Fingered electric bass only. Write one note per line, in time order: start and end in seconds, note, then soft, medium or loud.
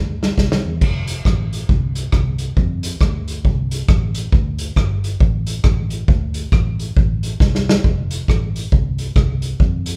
0.00 0.31 D2 medium
0.38 0.60 C2 medium
0.64 0.79 E2 medium
0.82 1.19 F1 loud
1.26 1.63 A1 medium
1.69 2.07 C2 medium
2.13 2.50 C2 medium
2.57 2.94 F2 loud
3.01 3.46 D2 medium
3.45 3.82 C2 loud
3.89 4.26 A1 medium
4.33 4.70 D2 loud
4.77 5.14 G1 medium
5.21 5.58 A1 loud
5.64 6.02 A1 medium
6.09 6.46 D2 loud
6.52 6.90 A1 medium
6.97 7.34 A1 loud
7.41 7.78 C2 medium
7.85 8.22 F1 loud
8.29 8.66 A1 medium
8.73 9.10 C2 loud
9.16 9.54 C2 medium
9.60 9.96 F2 loud